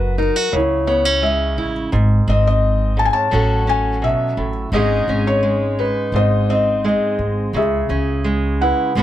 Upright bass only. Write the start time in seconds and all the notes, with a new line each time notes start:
Already playing: F#1
0.53 C#2
1.58 A1
1.93 G#1
2.28 G#1
3.32 A1
4.37 A1
4.72 G#1
5.08 G#1
6.12 G#1
7.19 G#1
7.53 C#2
7.89 C#2
8.95 G#1